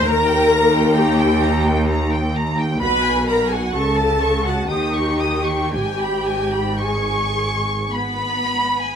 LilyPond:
<<
  \new Staff \with { instrumentName = "Violin section" } { \time 3/4 \key gis \minor \tempo 4 = 62 << { ais''16 g''16 ais''16 g''16 ais''16 g''16 ais''16 g''16 ais''16 g''16 ais''16 g''16 | b''16 gis''16 b''16 gis''16 cis'''16 a''16 cis'''16 a''16 dis'''16 cis'''16 dis'''16 cis'''16 | gis''16 b''16 gis''16 b''16 cis'''4 b''8. gis''16 | } \\ { r2. | r2. | r2 b''4 | } >> }
  \new Staff \with { instrumentName = "Violin section" } { \time 3/4 \key gis \minor ais''4 g''4 r4 | b''8 ais''16 fis''16 a''8. fis''16 g''4 | g''4 gis''4 r4 | }
  \new Staff \with { instrumentName = "Viola section" } { \time 3/4 \key gis \minor ais'4 g'4 r4 | b'8 ais'16 fis'16 a'8. fis'16 g'4 | g'4 gis'4 r4 | }
  \new Staff \with { instrumentName = "Cello section" } { \clef bass \time 3/4 \key gis \minor dis,2. | b,4 cis4 dis4 | gis,2 b4 | }
  \new Staff \with { instrumentName = "Double bass section" } { \clef bass \time 3/4 \key gis \minor dis,2. | b,,4 cis,4 dis,4 | gis,,2. | }
>>